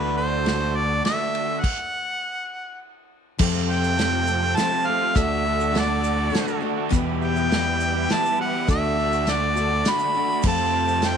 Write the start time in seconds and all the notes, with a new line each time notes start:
Already playing: D2 D3 A3 D4 F#4 A4 B4 D5 A5
0.17 C5
0.45 D3 A3 D4 F#4, snare, ride
0.76 D5
1.03 D3 A3 D4 F#4 E5, snare, ride
1.35 ride
1.60 F#5, kick, crash
3.39 F2 C3 F3 A3 C4 F4 G4 A4 C5 G5, kick, crash, shaker
3.69 F3 A3 C4 F4 G5, shaker
3.84 F3 A3 C4 F4, shaker
3.97 F2 C3 F3 A3 C4 F4 G4, snare, closed hi-hat
4.26 A3 C4 G4, shaker
4.41 F3 A3 C4 F4
4.56 F3 A3 C4 G4 A5, snare, closed hi-hat, shaker
4.60 F4
4.71 F3 A3 C4 F4
4.85 F3 A3 C4 G4 F5
4.89 F4
5.00 A3 C4 F4
5.04 F3
5.15 D2 D3 A3 D4 F#4 D5 E5 A5, kick, closed hi-hat, shaker
5.20 A4
5.45 D3 A3 D4 F#4, shaker
5.60 A3 D4 F#4, shaker
5.73 D3 A3 D4 F#4, snare, closed hi-hat
5.79 D5
6.04 shaker
6.17 A3 D4 F#4
6.32 D3 A3 D4 F#4, snare, closed hi-hat, shaker
6.47 A3 D4 F#4, shaker
6.60 D3 A3 D4 F#4
6.65 F#4
6.77 A3 D4 F#4
6.92 E2 B2 E3 G3 B3 G4 B4 E5 B5, kick, closed hi-hat, shaker
7.21 E3 G3 B3 G4 G5, shaker
7.35 E3 G3 B3 G4, shaker
7.51 E2 B2 E3 G3 B3 G4, snare, closed hi-hat
7.80 shaker
7.95 E3 G3 B3 G4
8.09 E3 G3 B3 G4, snare, closed hi-hat, shaker
8.13 A5
8.24 G3 B3 G4, shaker
8.28 E3
8.39 E3 G3 B3 G4 F#5
8.53 E3 G3 B3 G4
8.67 D2 D3 A3 D4 F#4 A4 D5 E5 A5, kick, closed hi-hat, shaker
8.72 F#4
8.84 shaker
8.97 D3 A3 D4 F#4, shaker
9.11 A3 D4 F#4, shaker
9.25 D3 A3 D4 F#4, snare, closed hi-hat
9.30 D5
9.55 A3 D4 F#4, shaker
9.70 A3 D4 F#4
9.85 D3 A3 D4 F#4, snare, closed hi-hat, shaker
9.90 B5
9.99 D4 F#4, shaker
10.04 A3
10.14 D3 A3 D4, shaker
10.18 F#4
10.28 A3 D4 F#4
10.42 F2 C3 F3 A3 C4 F4 C5 G5, kick, crash, shaker
10.46 F4 G4 A5
10.73 F3 A3 C4 F4, shaker
10.88 F3 A3 C4 F4, shaker
11.02 F2 C3 F3 A3 C4 G4, snare, closed hi-hat
11.06 F4 G5